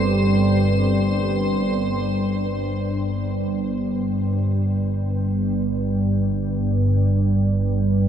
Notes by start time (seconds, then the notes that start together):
Already playing: G1 G2 C4 G4 A4 C5 C6
1.62 G1 G2